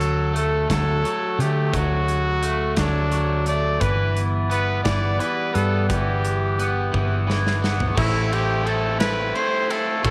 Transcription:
0.00 0.66 D2 loud
0.00 0.68 F#3 medium
0.00 0.32 A4 medium
0.00 closed hi-hat medium
0.33 1.37 A3 medium
0.33 0.68 A4 medium
0.33 closed hi-hat medium
0.69 1.03 D2 medium
0.69 1.03 F#3 medium
0.69 1.42 A4 medium
0.69 kick medium
0.69 snare loud
0.69 closed hi-hat medium
1.04 1.72 F#3 medium
1.04 closed hi-hat medium
1.38 1.75 D3 medium
1.38 2.41 A3 medium
1.38 1.77 G4 medium
1.38 closed hi-hat medium
1.73 2.74 D2 loud
1.73 2.75 F#3 medium
1.73 2.77 F#4 medium
1.73 kick loud
1.73 closed hi-hat medium
2.08 closed hi-hat medium
2.42 3.45 A3 medium
2.42 closed hi-hat medium
2.77 3.77 D2 medium
2.77 3.10 F#3 medium
2.77 3.43 D4 medium
2.77 kick medium
2.77 snare loud
2.77 closed hi-hat medium
3.11 3.80 F#3 medium
3.11 closed hi-hat medium
3.46 3.81 A3 medium
3.46 3.82 D5 medium
3.46 closed hi-hat medium
3.80 4.82 G1 loud
3.80 4.84 E3 medium
3.80 7.96 G3 medium
3.80 7.97 B3 medium
3.80 7.97 E4 medium
3.80 4.23 B4 medium
3.80 7.98 B4 medium
3.80 7.98 D5 medium
3.80 kick loud
3.80 closed hi-hat medium
4.17 closed hi-hat medium
4.50 5.51 B3 medium
4.50 4.83 B4 medium
4.50 closed hi-hat medium
4.84 5.18 G1 medium
4.84 5.18 E3 medium
4.84 5.22 D5 medium
4.84 kick medium
4.84 snare loud
4.84 closed hi-hat medium
5.19 5.88 E3 medium
5.19 5.56 B4 medium
5.19 closed hi-hat medium
5.53 5.91 G2 loud
5.53 6.58 B3 medium
5.53 5.88 A4 medium
5.53 closed hi-hat medium
5.89 6.89 G1 loud
5.89 6.91 E3 medium
5.89 7.23 G4 medium
5.89 kick loud
5.89 closed hi-hat medium
6.25 closed hi-hat medium
6.59 7.61 B3 medium
6.59 closed hi-hat medium
6.92 7.94 G1 medium
6.92 7.26 E3 medium
6.92 kick medium
7.27 7.94 E3 medium
7.27 snare medium
7.47 snare medium
7.62 7.96 B3 medium
7.62 snare medium
7.80 floor tom medium
7.95 9.31 A1 medium
7.95 8.63 A3 medium
7.95 8.32 C4 loud
7.95 8.35 E4 medium
7.95 8.29 E4 medium
7.95 8.30 E6 medium
7.95 kick loud
7.95 crash loud
8.29 8.65 C4 medium
8.29 8.67 E4 medium
8.29 8.68 G4 medium
8.29 8.66 G6 medium
8.29 ride medium
8.64 9.33 A3 medium
8.64 9.00 C4 medium
8.64 8.99 E4 medium
8.64 8.99 A4 medium
8.64 ride medium
8.69 9.02 A6 medium
8.99 9.35 C4 medium
8.99 9.37 E4 medium
8.99 9.37 B4 medium
8.99 9.33 B6 medium
8.99 snare loud
8.99 ride loud
9.34 10.02 A3 medium
9.34 9.70 C4 medium
9.34 9.68 E4 medium
9.34 9.72 C5 medium
9.34 9.71 C7 medium
9.34 ride medium
9.68 10.03 C4 medium
9.68 10.05 E4 medium
9.68 10.04 A4 medium
9.68 ride medium
9.72 10.05 A6 medium
10.03 10.10 A1 loud
10.03 10.10 A3 medium
10.03 10.10 C4 loud
10.03 10.10 E4 loud
10.03 10.10 A4 medium
10.03 10.10 A6 medium
10.03 kick loud
10.03 ride medium

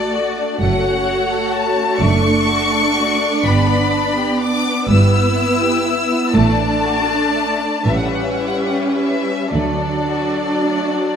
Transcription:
0.00 0.36 A1 medium
0.00 0.37 A2 medium
0.00 0.57 A3 soft
0.00 0.60 F#4 soft
0.00 0.14 A4 soft
0.00 0.61 D5 medium
0.00 0.61 D5 soft
0.14 0.38 F#4 soft
0.38 0.61 D4 soft
0.61 1.75 F#1 medium
0.61 1.75 F#2 medium
0.61 0.83 A3 soft
0.61 3.41 A3 medium
0.61 1.97 F#4 medium
0.61 1.97 C#5 medium
0.61 1.52 F#5 medium
0.84 1.08 C#4 soft
1.07 1.30 F#4 soft
1.30 1.53 A4 medium
1.52 1.76 F#4 soft
1.52 2.00 A5 medium
1.77 2.00 C#4 medium
2.00 3.19 F#1 medium
2.00 3.19 F#2 medium
2.00 2.22 A3 medium
2.00 4.90 D4 medium
2.00 4.90 D5 medium
2.00 3.45 C#6 medium
2.23 2.48 D4 soft
2.47 2.72 F#4 medium
2.72 2.97 A4 soft
2.96 3.21 F#4 soft
3.20 3.44 D4 soft
3.44 4.64 G1 medium
3.44 4.64 G2 medium
3.44 3.67 G3 medium
3.44 6.32 B3 medium
3.44 4.41 B5 medium
3.68 3.92 B3 medium
3.92 4.17 D4 medium
4.16 4.41 G4 medium
4.40 4.65 D4 soft
4.40 4.90 D6 medium
4.65 4.90 B3 medium
4.89 6.10 G1 medium
4.89 6.10 G2 medium
4.89 5.12 G3 medium
4.89 6.33 E4 medium
4.89 6.33 B4 medium
4.89 6.33 E6 medium
5.14 5.38 B3 medium
5.38 5.63 E4 medium
5.62 5.87 G4 soft
5.87 6.11 E4 soft
6.11 6.36 B3 soft
6.35 7.60 A1 medium
6.35 7.60 A2 medium
6.35 6.58 A3 medium
6.35 7.87 A3 medium
6.35 7.87 D4 medium
6.35 7.84 D5 medium
6.35 7.87 A5 medium
6.60 6.85 D4 medium
6.85 7.10 F#4 soft
7.09 7.35 D4 soft
7.35 7.61 A3 soft
7.61 7.87 D4 soft
7.86 9.23 A1 medium
7.86 9.24 A2 medium
7.86 9.50 G3 medium
7.86 8.12 A3 soft
7.86 9.53 C#4 soft
7.86 9.50 B4 soft
7.86 7.95 E5 medium
7.94 8.04 F#5 medium
8.04 8.13 E5 medium
8.12 8.41 C#4 soft
8.12 8.22 F#5 medium
8.21 8.30 E5 medium
8.30 8.39 F#5 medium
8.38 8.68 E4 soft
8.38 8.48 E5 medium
8.47 8.57 F#5 medium
8.56 8.66 E5 soft
8.65 8.96 G4 soft
8.65 8.75 F#5 soft
8.74 8.85 E5 soft
8.84 8.94 F#5 soft
8.94 9.25 E4 soft
8.94 9.53 E5 medium
9.25 9.54 C#4 soft
9.52 10.90 D2 soft
9.52 10.90 D3 medium
9.52 11.16 F#3 soft
9.52 9.80 A3 soft
9.52 11.16 D4 soft
9.52 11.04 A4 soft
9.52 11.16 D5 medium
9.81 10.09 D4 soft
10.09 10.37 F#4 soft
10.37 10.64 D4 soft
10.64 10.91 A3 soft
10.92 11.16 D4 soft

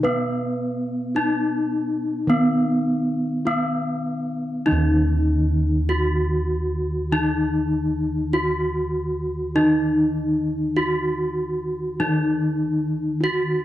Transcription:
0.00 1.12 B2 medium
0.00 2.28 B3 medium
0.00 3.43 B4 medium
0.05 1.16 B3 medium
1.15 2.30 D#4 medium
1.15 1.23 E4 soft
2.27 5.84 D#3 medium
2.27 3.46 B3 medium
2.27 4.67 B3 medium
3.45 4.67 B3 medium
3.45 3.53 E4 soft
4.66 7.10 D#3 medium
4.66 5.89 D#4 medium
4.66 8.29 D#4 medium
4.71 11.97 D#2 medium
5.89 5.97 E4 soft
5.89 7.11 F#4 medium
7.12 9.55 D#3 medium
7.12 8.34 D#4 medium
8.33 8.41 E4 medium
8.33 9.55 F#4 medium
9.56 12.00 D#3 medium
9.56 13.17 D#4 medium
9.56 10.77 D#4 medium
10.76 10.86 E4 soft
10.76 11.99 F#4 medium
12.00 13.65 D#3 medium
12.00 13.22 D#4 medium
13.21 13.29 E4 soft
13.21 13.65 F#4 medium

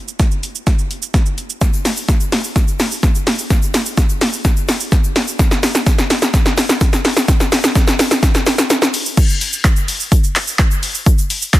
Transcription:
0.08 shaker medium
0.20 kick loud
0.20 snare medium
0.20 closed hi-hat medium
0.20 shaker medium
0.31 shaker medium
0.43 closed hi-hat medium
0.43 shaker medium
0.55 shaker medium
0.67 kick loud
0.67 snare medium
0.67 closed hi-hat medium
0.67 shaker medium
0.79 shaker medium
0.91 closed hi-hat medium
0.91 shaker medium
1.02 shaker medium
1.14 kick loud
1.14 snare medium
1.14 closed hi-hat medium
1.14 shaker medium
1.26 shaker medium
1.38 closed hi-hat soft
1.38 shaker medium
1.50 shaker medium
1.61 kick loud
1.61 snare medium
1.61 closed hi-hat medium
1.61 shaker medium
1.73 shaker soft
1.85 snare medium
1.85 open hi-hat medium
1.85 shaker soft
1.85 shaker medium
1.97 shaker medium
2.09 kick loud
2.09 snare medium
2.09 closed hi-hat medium
2.09 shaker medium
2.20 shaker medium
2.20 shaker soft
2.32 snare medium
2.32 open hi-hat medium
2.32 shaker medium
2.44 shaker soft
2.44 shaker medium
2.56 kick loud
2.56 snare medium
2.56 closed hi-hat medium
2.56 shaker medium
2.68 shaker medium
2.68 shaker soft
2.79 snare medium
2.79 open hi-hat medium
2.79 shaker soft
2.79 shaker medium
2.91 shaker medium
3.03 kick loud
3.03 snare medium
3.03 closed hi-hat medium
3.03 shaker medium
3.15 shaker soft
3.15 shaker medium
3.27 snare loud
3.27 open hi-hat medium
3.27 shaker medium
3.39 shaker soft
3.39 shaker medium
3.50 kick loud
3.50 snare medium
3.50 closed hi-hat medium
3.50 shaker medium
3.62 shaker soft
3.74 snare loud
3.74 open hi-hat medium
3.74 shaker soft
3.74 shaker medium
3.86 shaker medium
3.98 kick loud
3.98 snare medium
3.98 closed hi-hat medium
3.98 shaker medium
4.09 shaker medium
4.21 snare loud
4.21 open hi-hat medium
4.21 shaker medium
4.33 shaker soft
4.33 shaker medium
4.45 kick loud
4.45 snare medium
4.45 closed hi-hat medium
4.45 shaker medium
4.57 shaker medium
4.57 shaker soft
4.68 snare medium
4.68 open hi-hat medium
4.68 shaker soft
4.68 shaker medium
4.80 shaker medium
4.92 kick loud
4.92 snare medium
4.92 closed hi-hat medium
4.92 shaker medium
5.04 shaker medium
5.04 shaker soft
5.16 snare loud
5.16 open hi-hat medium
5.16 shaker medium
5.28 shaker medium
5.39 kick loud
5.39 snare loud
5.39 closed hi-hat medium
5.39 shaker medium
5.51 snare loud
5.51 shaker soft
5.51 shaker medium
5.63 snare loud
5.63 open hi-hat medium
5.63 shaker soft
5.63 shaker medium
5.75 snare loud
5.75 shaker medium
5.86 kick loud
5.86 snare loud
5.86 closed hi-hat medium
5.86 shaker medium
5.98 snare loud
5.98 shaker medium
5.98 shaker soft
6.10 snare loud
6.10 open hi-hat medium
6.10 shaker medium
6.22 snare loud
6.22 shaker soft
6.22 shaker medium
6.34 kick loud
6.34 snare loud
6.34 closed hi-hat medium
6.34 shaker medium
6.46 snare loud
6.46 shaker medium
6.46 shaker soft
6.57 snare loud
6.57 open hi-hat medium
6.57 shaker soft
6.57 shaker medium
6.69 snare loud
6.69 shaker medium
6.81 kick loud
6.81 snare loud
6.81 closed hi-hat medium
6.81 shaker medium
6.93 snare loud
6.93 shaker medium
6.93 shaker soft
7.05 snare loud
7.05 open hi-hat medium
7.05 shaker medium
7.17 snare loud
7.17 shaker medium
7.28 kick loud
7.28 snare loud
7.28 closed hi-hat medium
7.28 shaker medium
7.40 snare loud
7.40 shaker soft
7.52 snare loud
7.52 open hi-hat medium
7.52 shaker soft
7.52 shaker medium
7.64 snare loud
7.64 shaker medium
7.75 kick loud
7.75 snare loud
7.75 closed hi-hat medium
7.75 shaker medium
7.87 snare loud
7.87 shaker medium
7.87 shaker soft
7.99 snare loud
7.99 open hi-hat medium
7.99 shaker medium
8.11 snare loud
8.11 shaker soft
8.11 shaker medium
8.23 kick loud
8.23 snare loud
8.23 closed hi-hat medium
8.23 shaker medium
8.35 snare loud
8.35 shaker medium
8.35 shaker soft
8.46 snare loud
8.46 open hi-hat medium
8.46 shaker soft
8.46 shaker medium
8.58 snare loud
8.58 shaker medium
8.70 snare loud
8.70 closed hi-hat medium
8.70 shaker medium
8.82 snare loud
8.82 shaker medium
8.82 shaker soft
8.94 open hi-hat medium
8.94 shaker soft
8.94 shaker medium
9.06 shaker medium
9.17 kick loud
9.17 closed hi-hat medium
9.17 crash loud
9.17 shaker medium
9.29 shaker soft
9.29 shaker medium
9.41 open hi-hat medium
9.41 shaker soft
9.41 shaker medium
9.53 shaker medium
9.65 kick loud
9.65 clap loud
9.65 closed hi-hat medium
9.65 shaker medium
9.76 shaker medium
9.76 shaker soft
9.88 open hi-hat medium
9.88 shaker medium
10.00 shaker soft
10.00 shaker medium
10.12 kick loud
10.12 closed hi-hat medium
10.12 shaker medium
10.24 shaker medium
10.24 shaker soft
10.36 clap medium
10.36 open hi-hat medium
10.36 shaker medium
10.47 shaker medium
10.59 kick loud
10.59 clap loud
10.59 closed hi-hat medium
10.59 shaker medium
10.71 shaker medium
10.71 shaker soft
10.83 open hi-hat medium
10.83 shaker medium
10.95 shaker medium
11.06 kick loud
11.06 closed hi-hat medium
11.06 shaker medium
11.18 shaker soft
11.18 shaker medium
11.30 open hi-hat medium
11.30 shaker soft
11.30 shaker medium
11.42 shaker medium
11.54 kick loud
11.54 clap loud
11.54 closed hi-hat medium
11.54 shaker medium

